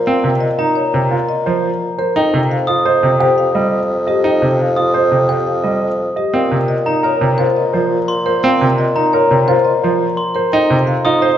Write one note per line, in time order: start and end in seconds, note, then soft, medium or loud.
0.00 2.04 A#2 medium
0.00 0.11 A#4 medium
0.00 0.11 C5 medium
0.06 0.29 C4 medium
0.06 0.29 F5 medium
0.24 0.46 C3 medium
0.40 0.63 D#5 medium
0.59 0.81 D#4 medium
0.59 0.81 A#5 medium
0.76 0.98 C#5 medium
0.94 1.16 C3 medium
1.11 1.33 F4 medium
1.29 1.51 D#5 medium
1.46 1.69 F3 medium
1.46 1.68 C5 medium
1.98 2.21 A#4 medium
1.98 2.21 C5 medium
2.16 6.23 F2 medium
2.16 2.38 D#4 medium
2.16 2.38 G5 medium
2.34 2.56 C3 medium
2.51 2.73 F5 medium
2.67 2.90 F4 medium
2.67 2.90 D#6 medium
2.85 3.08 C5 medium
2.85 3.08 D#5 medium
3.03 3.25 C3 medium
3.20 3.43 G4 medium
3.20 3.43 C5 medium
3.38 3.60 F5 medium
3.55 3.78 G3 medium
3.55 3.77 D#5 medium
4.07 4.30 G4 medium
4.07 4.30 D#5 medium
4.24 4.47 D#4 medium
4.24 4.48 G5 medium
4.42 4.65 C3 medium
4.60 4.82 F5 medium
4.76 4.99 F4 medium
4.76 4.99 D#6 medium
4.94 5.17 C5 medium
4.94 5.17 D#5 medium
5.12 5.34 C3 soft
5.29 5.52 G4 medium
5.29 5.52 C5 medium
5.47 5.69 F5 soft
5.64 5.87 G3 soft
5.64 5.87 D#5 medium
6.16 6.39 G4 soft
6.16 6.39 D#5 medium
6.34 10.41 A#2 medium
6.34 6.56 C4 medium
6.34 6.56 F5 medium
6.51 6.74 C3 medium
6.68 6.91 D#5 medium
6.86 7.09 D#4 medium
6.86 7.09 A#5 medium
7.03 7.26 A#4 medium
7.03 7.27 C#5 medium
7.21 7.44 C3 medium
7.38 7.61 F4 medium
7.38 7.61 C5 medium
7.57 7.79 D#5 medium
7.73 7.96 F3 medium
7.73 7.96 C5 medium
8.08 8.31 C6 medium
8.26 8.48 A#4 medium
8.26 8.48 C5 medium
8.43 8.66 C4 medium
8.43 8.66 F5 medium
8.61 8.84 C3 medium
8.78 9.01 D#5 medium
8.96 9.18 D#4 medium
8.96 9.18 A#5 medium
9.13 9.36 A#4 medium
9.13 9.36 C#5 medium
9.31 9.53 C3 medium
9.48 9.71 F4 medium
9.48 9.71 C5 medium
9.65 9.88 D#5 medium
9.83 10.06 F3 medium
9.83 10.06 C5 medium
10.17 10.40 C6 medium
10.35 10.58 A#4 medium
10.35 10.58 C5 medium
10.52 11.38 F2 medium
10.52 10.75 D#4 medium
10.52 10.75 G5 medium
10.70 10.93 C3 medium
10.87 11.10 F5 medium
11.05 11.28 D#4 medium
11.05 11.27 F4 medium
11.05 11.27 D#6 medium
11.22 11.38 C5 medium
11.22 11.38 D#5 medium